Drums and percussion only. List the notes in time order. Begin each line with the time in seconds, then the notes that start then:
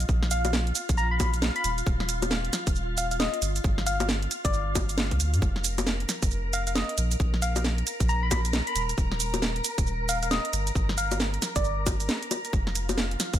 0.00 closed hi-hat, shaker
0.09 kick, shaker
0.23 snare
0.31 closed hi-hat, shaker
0.45 closed hi-hat, high bongo, shaker
0.53 snare, shaker
0.67 closed hi-hat
0.75 closed hi-hat, shaker
0.89 kick, closed hi-hat, shaker
0.98 shaker
1.20 kick, closed hi-hat, high bongo, shaker
1.34 closed hi-hat, shaker
1.42 snare, shaker
1.56 closed hi-hat
1.64 closed hi-hat, shaker
1.78 closed hi-hat, shaker
1.86 kick, shaker
2.00 snare
2.09 closed hi-hat, shaker
2.22 closed hi-hat, high bongo, shaker
2.31 snare, shaker
2.45 closed hi-hat
2.53 snare, closed hi-hat, shaker
2.67 kick, closed hi-hat, shaker
2.75 shaker
2.98 closed hi-hat, shaker
3.11 closed hi-hat, shaker
3.20 snare, shaker
3.34 closed hi-hat
3.42 closed hi-hat, shaker
3.56 closed hi-hat, shaker
3.64 kick, shaker
3.78 snare
3.87 closed hi-hat, shaker
4.00 closed hi-hat, high bongo, shaker
4.09 snare, shaker
4.22 closed hi-hat
4.31 closed hi-hat, shaker
4.45 kick, closed hi-hat, shaker
4.53 shaker
4.75 kick, closed hi-hat, high bongo, shaker
4.89 closed hi-hat, shaker
4.98 snare, shaker
5.11 kick, closed hi-hat
5.20 closed hi-hat, shaker
5.34 closed hi-hat, shaker
5.42 kick, shaker
5.56 snare
5.64 closed hi-hat, shaker
5.78 closed hi-hat, high bongo, shaker
5.87 snare, shaker
6.00 closed hi-hat
6.09 snare, closed hi-hat, shaker
6.23 kick, closed hi-hat, shaker
6.31 shaker
6.53 closed hi-hat, shaker
6.67 closed hi-hat, shaker
6.75 snare, shaker
6.89 closed hi-hat
6.98 closed hi-hat, shaker
7.11 closed hi-hat, shaker
7.20 kick, shaker
7.34 snare
7.42 closed hi-hat, shaker
7.56 closed hi-hat, high bongo, shaker
7.64 snare, shaker
7.78 closed hi-hat
7.87 closed hi-hat, shaker
8.00 kick, closed hi-hat, shaker
8.09 shaker
8.31 kick, closed hi-hat, high bongo, shaker
8.45 closed hi-hat, shaker
8.53 snare, shaker
8.67 closed hi-hat
8.76 closed hi-hat, shaker
8.89 closed hi-hat, shaker
8.98 kick, shaker
9.12 snare
9.20 closed hi-hat, shaker
9.34 closed hi-hat, high bongo, shaker
9.42 snare, shaker
9.56 closed hi-hat
9.64 closed hi-hat, shaker
9.78 kick, closed hi-hat, shaker
9.87 shaker
10.09 closed hi-hat, shaker
10.23 closed hi-hat, shaker
10.31 snare, shaker
10.45 closed hi-hat
10.53 closed hi-hat, shaker
10.67 closed hi-hat, shaker
10.75 kick, shaker
10.89 snare
10.98 closed hi-hat, shaker
11.12 closed hi-hat, high bongo, shaker
11.20 snare, shaker
11.34 closed hi-hat
11.42 snare, closed hi-hat, shaker
11.56 kick, closed hi-hat, shaker
11.64 shaker
11.87 kick, closed hi-hat, high bongo, shaker
12.00 closed hi-hat, shaker
12.09 snare, shaker
12.23 closed hi-hat
12.31 closed hi-hat, high bongo, shaker
12.45 closed hi-hat, shaker
12.53 kick, shaker
12.67 snare
12.75 closed hi-hat, shaker
12.89 closed hi-hat, high bongo, shaker
12.98 snare, shaker
13.11 closed hi-hat
13.20 snare, closed hi-hat, shaker
13.34 kick, closed hi-hat, shaker